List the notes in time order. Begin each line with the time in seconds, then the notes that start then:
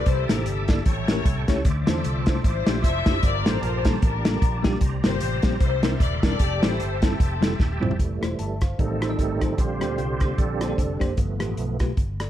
0.06 C2 C3 E4 G4 A4 C5 E5 A5 D6, kick, closed hi-hat
0.28 A1 A#3 D4 E4 A4 A#4 C5, snare, closed hi-hat
0.46 G1 D4 E4 A4, closed hi-hat
0.68 A#3 D4 E4 A4 D5, kick, snare, closed hi-hat
0.86 A1 A2 E4 G4 C#5 G5 C#6, kick, closed hi-hat
1.08 A3 C#4 E4 G4 A#4, snare, closed hi-hat
1.25 C2, kick, closed hi-hat
1.48 C#2 A3 C#4 E4 G4 C#5, kick, snare, closed hi-hat
1.65 D2 D3 C5 D5 E5 D6, kick, closed hi-hat
1.87 E2 A3 C4 D4 E4 F4 A4 C5, snare, closed hi-hat
2.04 C2, closed hi-hat
2.26 A3 D4 E4 F4 C5, kick, snare, closed hi-hat
2.44 A1 E4 F4 C5, kick, closed hi-hat
2.66 A#1 A3 D4 E4 F4 G4, snare, closed hi-hat
2.84 F1 A4 C5 E5, kick, closed hi-hat
3.06 F#1 A3 D4 E4 F4 G4, kick, snare, closed hi-hat
3.23 G1 G2 A#3 F4 G4 A#4 D5 A5, kick, closed hi-hat
3.46 A1 G3 A#3 D4 F4 A4 C5, snare, closed hi-hat
3.62 A#1 F4 A4 C5, closed hi-hat
3.85 G3 A#3 D4 F4 A4, kick, snare, closed hi-hat
4.02 A1 D4 F4 A#4, kick, closed hi-hat
4.24 G3 A#3 D4 F4 A4, snare, closed hi-hat
4.42 A#1, kick, closed hi-hat
4.63 G3 A#3 D4 F4 G4, kick, snare, closed hi-hat
4.81 C2 C3 C5 A#5, kick, closed hi-hat
5.04 G1 G3 A#3 C4 F4 G4 A#4 C5, snare, closed hi-hat
5.20 A1, closed hi-hat
5.42 A#1 G3 A#3 C4 F4 G4, kick, snare, closed hi-hat
5.60 C2 C3 E4 G4 A#4 C5 D5 E5 C6, kick, closed hi-hat
5.83 G3 C4 D4 E4 A#4, snare, closed hi-hat
6.00 D#1 D5, kick, closed hi-hat
6.23 E1 G3 C4 D4 E4 G4 A4 A#4 D5, kick, snare, closed hi-hat
6.39 F1 G4 G5 A5, kick, closed hi-hat
6.62 A1 G3 C4 E4 F4 A4 C5, snare, closed hi-hat
6.80 G1, closed hi-hat
7.02 G3 C4 E4 F4 A4, kick, snare, closed hi-hat
7.20 F1, kick, closed hi-hat
7.41 G3 C4 E4 F4 A4, snare, closed hi-hat
7.60 D#1, kick, snare
7.80 E1 G3 C4 E4 F4 C5, mid tom
7.91 floor tom
7.98 F1 E3 G3 A3, kick, closed hi-hat
8.21 E1 A3 E4 F4 C5, cross-stick, closed hi-hat
8.39 G1 E5 A5, closed hi-hat
8.61 C5 F5, kick, cross-stick, closed hi-hat
8.78 A1 A2 D#3 G3 A3 C4 D#4 A4, kick, closed hi-hat
9.00 A3 D#4 F4 C5, cross-stick, closed hi-hat
9.09 A3 D#4 F4 D5
9.19 G#1, kick, closed hi-hat
9.40 A1 A3 D#4 F4 C5, kick, cross-stick, closed hi-hat
9.56 A#1 A#2 D3 G3 C4 F4 G4 C5, kick, closed hi-hat
9.80 D2 A#3 D4 G4 C5, cross-stick, closed hi-hat
9.97 C2 F4 G4 C5, closed hi-hat
10.20 A#3 D4 G4 C5, kick, cross-stick, closed hi-hat
10.38 A#1 C4 D4 A4, kick, closed hi-hat
10.60 A#3 D4 G4 C5, cross-stick, closed hi-hat
10.68 A#3 D4 G4 C5
10.78 F1, kick, closed hi-hat
10.99 F#1 A#3 D4 G4 C5, kick, cross-stick, closed hi-hat
11.16 G1 G2 F3 A3 B3, kick, closed hi-hat
11.39 A1 A3 F4 G4 B4, cross-stick, closed hi-hat
11.57 B1, closed hi-hat
11.79 A3 F4 G4 B4, kick, cross-stick, closed hi-hat
11.97 G1, kick, closed hi-hat
12.20 A4 D5, cross-stick, closed hi-hat